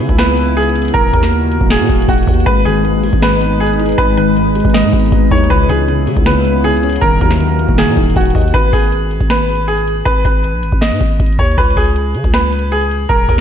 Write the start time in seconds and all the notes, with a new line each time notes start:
Already playing: C#3 B3 E4 G#4
0.09 C#2, kick, closed hi-hat
0.18 B4, snare, closed hi-hat
0.37 closed hi-hat
0.56 G#4, closed hi-hat
0.63 closed hi-hat
0.69 closed hi-hat
0.75 closed hi-hat
0.82 closed hi-hat
0.85 closed hi-hat
0.88 closed hi-hat
0.94 D#1 D#3 A#3 F#4 A#4, kick, closed hi-hat
1.13 D#2 A#4, kick, closed hi-hat
1.23 snare
1.33 closed hi-hat
1.51 closed hi-hat
1.61 D#1, kick
1.70 G#4, snare, closed hi-hat
1.77 A#2, closed hi-hat
1.83 closed hi-hat
1.89 D#1, kick, closed hi-hat
1.96 closed hi-hat
2.02 closed hi-hat
2.08 D#1 F#4, kick, closed hi-hat
2.13 closed hi-hat
2.18 closed hi-hat
2.23 closed hi-hat
2.27 D#2, kick, closed hi-hat, open hi-hat
2.34 closed hi-hat
2.40 closed hi-hat
2.46 G#1 G#2 G#3 D#4 B4, kick, closed hi-hat
2.65 G#1 D#3 G#4, closed hi-hat
2.84 G#2, closed hi-hat
3.03 G#3, closed hi-hat, open hi-hat
3.13 G#1, kick, closed hi-hat
3.22 G#2 B4, snare, closed hi-hat
3.41 B3, closed hi-hat
3.60 G#2 G#4, closed hi-hat
3.67 closed hi-hat
3.73 closed hi-hat
3.79 D#4, closed hi-hat
3.86 closed hi-hat
3.89 closed hi-hat
3.92 closed hi-hat
3.98 G#1 G#2 B4, kick, closed hi-hat
4.17 D#3 B4, closed hi-hat
4.36 G#2, closed hi-hat
4.55 G#3, closed hi-hat
4.60 closed hi-hat
4.65 G#1, kick, closed hi-hat
4.70 closed hi-hat
4.74 G#2 D#5, snare, closed hi-hat
4.84 G#2
4.93 G#1 B3, kick, closed hi-hat
5.00 closed hi-hat
5.06 closed hi-hat
5.12 G#1 G#2, kick, closed hi-hat
5.31 D#2 D#4 C#5, kick, closed hi-hat
5.38 closed hi-hat
5.44 closed hi-hat
5.50 C#2 C#3 B3 E4 B4, kick, closed hi-hat
5.69 C#2 E3 G#4, closed hi-hat
5.88 C#3, closed hi-hat
6.07 C#3 G#3, closed hi-hat, open hi-hat
6.17 C#2, kick, closed hi-hat
6.26 C#3 B4, snare, closed hi-hat
6.45 B3, closed hi-hat
6.64 C#3 G#4, closed hi-hat
6.70 closed hi-hat
6.77 closed hi-hat
6.83 C#4, closed hi-hat
6.89 closed hi-hat
6.93 closed hi-hat
6.96 closed hi-hat
7.01 D#1 D#3 A#3 F#4 A#4, kick, closed hi-hat
7.21 D#2 F#3 A#4, kick, closed hi-hat
7.31 snare
7.40 D#3, closed hi-hat
7.59 A#3, closed hi-hat
7.69 D#1, kick
7.78 D#3 G#4, snare, closed hi-hat
7.84 A#2, closed hi-hat
7.91 closed hi-hat
7.97 D#1 D#4, kick, closed hi-hat
8.03 closed hi-hat
8.10 closed hi-hat
8.16 D#1 D#3 F#4, kick, closed hi-hat
8.21 closed hi-hat
8.25 closed hi-hat
8.30 closed hi-hat
8.35 D#2 D#5, kick, closed hi-hat, open hi-hat
8.41 closed hi-hat
8.48 closed hi-hat
8.54 G#1 B4, kick, closed hi-hat
8.73 G#1 G#4, kick, open hi-hat
8.92 closed hi-hat
9.11 closed hi-hat
9.21 G#1, kick, closed hi-hat
9.30 B4, snare, closed hi-hat
9.49 closed hi-hat
9.55 closed hi-hat
9.62 closed hi-hat
9.68 G#4, closed hi-hat
9.77 closed hi-hat
9.87 closed hi-hat
10.05 G#1 B4, kick, closed hi-hat
10.25 G#1 B4, kick, closed hi-hat
10.44 closed hi-hat
10.53 A#1
10.63 G#1, closed hi-hat
10.72 G#1, kick
10.81 D#5, snare, closed hi-hat
10.87 closed hi-hat
10.91 G#2, closed hi-hat
10.96 closed hi-hat
11.01 G#1, kick, closed hi-hat
11.20 G#1, kick, closed hi-hat
11.26 closed hi-hat
11.33 closed hi-hat
11.39 D#2 C#5, kick, closed hi-hat
11.45 closed hi-hat
11.52 closed hi-hat
11.58 C#2 B4, kick, closed hi-hat
11.64 closed hi-hat
11.70 closed hi-hat
11.77 C#2 G#4, kick, open hi-hat
11.96 closed hi-hat
12.15 C#3, closed hi-hat
12.24 C#2, kick, closed hi-hat
12.34 B4, snare, closed hi-hat
12.53 closed hi-hat
12.59 closed hi-hat
12.65 closed hi-hat
12.72 G#4, closed hi-hat
12.81 closed hi-hat
12.91 closed hi-hat
13.09 D#1 A#4, kick, closed hi-hat
13.28 D#2 A#4, kick, open hi-hat